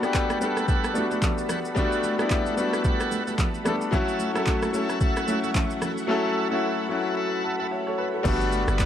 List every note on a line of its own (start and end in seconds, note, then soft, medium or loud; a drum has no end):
0.00 0.39 G3 loud
0.00 0.38 G3 medium
0.00 0.02 A3 loud
0.00 0.34 A3 medium
0.00 0.03 B3 loud
0.00 0.35 B3 medium
0.00 0.04 D4 loud
0.00 0.35 D4 medium
0.00 0.97 F#4 loud
0.00 3.89 A4 medium
0.00 0.39 A4 medium
0.00 0.39 B4 medium
0.00 3.89 F#5 medium
0.00 0.39 F#5 medium
0.00 1.74 A5 medium
0.00 3.89 B5 medium
0.00 cross-stick medium
0.00 shaker medium
0.05 0.36 G4 medium
0.14 kick medium
0.14 clap medium
0.14 shaker medium
0.30 cross-stick loud
0.30 high conga medium
0.30 shaker soft
0.39 0.85 G3 medium
0.39 0.66 G3 medium
0.39 0.86 A3 medium
0.39 0.86 B3 medium
0.39 0.87 D4 medium
0.39 0.67 A4 medium
0.39 0.87 A4 medium
0.39 0.67 B4 medium
0.39 0.67 F#5 medium
0.39 shaker medium
0.57 cross-stick medium
0.57 shaker medium
0.68 1.07 G3 medium
0.68 1.07 A4 medium
0.68 1.07 B4 medium
0.68 1.07 F#5 loud
0.68 kick loud
0.68 shaker medium
0.84 cross-stick medium
0.84 shaker medium
0.93 1.61 G3 medium
0.93 1.61 A3 medium
0.93 1.62 B3 medium
0.93 1.62 D4 medium
0.93 1.63 F#4 medium
0.93 high conga medium
0.93 shaker medium
1.11 1.18 G3 medium
1.11 1.18 A4 medium
1.11 1.18 B4 medium
1.11 1.18 F#5 medium
1.11 high conga medium
1.11 shaker medium
1.22 kick medium
1.22 clap medium
1.22 low conga medium
1.22 shaker medium
1.38 shaker medium
1.49 1.59 G3 medium
1.49 1.60 A4 medium
1.49 1.60 B4 medium
1.49 1.60 F#5 medium
1.49 cross-stick loud
1.49 low conga medium
1.49 shaker medium
1.65 shaker medium
1.75 2.09 G3 loud
1.75 2.15 G3 loud
1.75 2.09 A3 loud
1.75 2.10 B3 loud
1.75 2.10 D4 loud
1.75 2.11 F#4 loud
1.75 2.15 A4 medium
1.75 2.15 B4 medium
1.75 2.16 F#5 loud
1.75 3.91 A5 medium
1.75 kick loud
1.75 low conga medium
1.75 shaker medium
1.92 shaker soft
2.03 high conga medium
2.03 shaker medium
2.17 2.50 G3 medium
2.17 2.55 G3 medium
2.17 2.50 A3 medium
2.17 2.51 B3 medium
2.17 2.51 D4 medium
2.17 2.52 E4 medium
2.17 2.55 A4 medium
2.17 2.55 B4 medium
2.17 2.55 F#5 medium
2.17 cross-stick loud
2.17 shaker medium
2.30 kick medium
2.30 clap medium
2.30 shaker medium
2.46 high conga medium
2.46 shaker medium
2.56 3.44 G3 medium
2.56 2.83 G3 medium
2.56 3.44 A3 medium
2.56 3.45 B3 medium
2.56 3.45 D4 medium
2.56 3.46 F#4 medium
2.56 2.83 A4 medium
2.56 2.83 B4 medium
2.56 2.83 F#5 medium
2.56 shaker medium
2.73 cross-stick medium
2.73 shaker medium
2.84 3.23 G3 medium
2.84 3.23 A4 medium
2.84 3.24 B4 medium
2.84 3.24 F#5 loud
2.84 kick loud
2.84 shaker medium
3.00 cross-stick loud
3.00 shaker medium
3.12 high conga medium
3.12 shaker medium
3.27 3.34 G3 medium
3.27 3.35 A4 medium
3.27 3.35 B4 medium
3.27 3.35 F#5 medium
3.27 high conga medium
3.27 shaker medium
3.39 kick medium
3.39 clap medium
3.39 low conga medium
3.39 shaker medium
3.54 shaker medium
3.64 3.87 G3 medium
3.64 3.76 G3 medium
3.64 3.88 A3 medium
3.64 3.88 B3 medium
3.64 3.89 D4 medium
3.64 3.76 A4 medium
3.64 3.89 A4 medium
3.64 3.76 B4 medium
3.64 3.76 F#5 medium
3.64 cross-stick loud
3.64 low conga medium
3.64 shaker medium
3.81 shaker medium
3.91 4.25 F#3 loud
3.91 4.26 A3 loud
3.91 4.26 C#4 loud
3.91 4.26 E4 loud
3.91 4.27 F#4 loud
3.91 4.31 A4 medium
3.91 8.21 A4 medium
3.91 4.32 E5 medium
3.91 8.21 E5 medium
3.91 4.32 F#5 loud
3.91 8.21 F#5 medium
3.91 6.07 C#6 medium
3.91 kick loud
3.91 low conga medium
3.91 shaker medium
4.08 shaker soft
4.20 high conga medium
4.20 shaker medium
4.33 4.66 F#3 medium
4.33 4.67 A3 medium
4.33 4.67 C#4 medium
4.33 4.67 E4 medium
4.33 4.71 A4 medium
4.33 4.68 A4 medium
4.33 4.71 E5 medium
4.33 4.71 F#5 medium
4.33 cross-stick loud
4.33 shaker medium
4.47 kick medium
4.47 clap medium
4.47 shaker medium
4.62 cross-stick loud
4.62 high conga medium
4.62 shaker medium
4.72 5.18 F#3 medium
4.72 5.18 A3 medium
4.72 5.19 C#4 medium
4.72 5.19 E4 medium
4.72 4.99 A4 medium
4.72 5.20 A4 medium
4.72 4.99 E5 medium
4.72 4.99 F#5 medium
4.72 shaker medium
4.89 cross-stick medium
4.89 shaker medium
5.01 5.40 A4 medium
5.01 5.40 E5 medium
5.01 5.40 F#5 loud
5.01 kick loud
5.01 shaker medium
5.17 cross-stick medium
5.17 shaker medium
5.26 5.94 F#3 medium
5.26 5.94 A3 medium
5.26 5.94 C#4 medium
5.26 5.95 E4 medium
5.26 5.95 F#4 medium
5.26 high conga medium
5.26 shaker medium
5.43 5.51 A4 medium
5.43 5.51 E5 medium
5.43 5.51 F#5 medium
5.43 high conga medium
5.43 shaker medium
5.55 kick medium
5.55 clap loud
5.55 low conga medium
5.55 shaker medium
5.71 shaker medium
5.81 5.92 A4 medium
5.81 5.92 E5 medium
5.81 5.92 F#5 medium
5.81 cross-stick loud
5.81 low conga medium
5.81 shaker medium
5.98 shaker medium
6.07 6.41 F#3 loud
6.07 6.42 A3 loud
6.07 6.42 C#4 loud
6.07 6.43 E4 loud
6.07 6.48 A4 medium
6.07 6.43 A4 loud
6.07 6.48 E5 medium
6.07 6.48 F#5 loud
6.07 8.23 B5 medium
6.50 6.82 F#3 medium
6.50 6.83 A3 medium
6.50 6.83 C#4 medium
6.50 6.84 E4 medium
6.50 6.84 F#4 medium
6.50 6.87 A4 medium
6.50 6.87 E5 medium
6.50 6.87 F#5 medium
6.88 7.76 F#3 medium
6.88 7.77 A3 medium
6.88 7.77 C#4 medium
6.88 7.78 E4 medium
6.88 7.45 F#4 medium
6.88 7.15 A4 medium
6.88 7.15 E5 medium
6.88 7.15 F#5 medium
7.17 7.56 A4 medium
7.17 7.56 E5 medium
7.17 7.56 F#5 loud
7.44 7.58 F#5 medium
7.44 7.59 A5 medium
7.59 7.67 A4 medium
7.59 7.67 E5 medium
7.59 7.70 F#5 medium
7.59 7.67 F#5 medium
7.71 7.85 C#5 medium
7.71 7.86 E5 medium
7.87 7.98 A4 medium
7.87 7.98 C#5 medium
7.98 8.08 A4 medium
7.98 8.13 B4 medium
7.98 8.08 E5 medium
7.98 8.08 F#5 medium
8.14 8.25 F#4 medium
8.14 8.40 A4 medium
8.23 8.66 G1 loud
8.23 8.86 G3 loud
8.23 8.86 A3 loud
8.23 8.86 B3 loud
8.23 8.86 D4 loud
8.23 8.86 F#4 loud
8.23 8.64 A4 loud
8.23 8.86 A4 medium
8.23 8.64 B4 medium
8.23 8.86 F#5 medium
8.23 8.64 F#5 loud
8.23 8.86 A5 medium
8.23 8.86 B5 medium
8.23 kick loud
8.23 crash loud
8.23 low conga medium
8.23 shaker medium
8.41 shaker soft
8.52 high conga medium
8.52 shaker medium
8.68 8.86 G1 loud
8.68 8.86 A4 medium
8.68 8.86 B4 medium
8.68 8.86 F#5 medium
8.68 cross-stick loud
8.68 shaker medium
8.79 kick medium
8.79 clap medium
8.79 shaker medium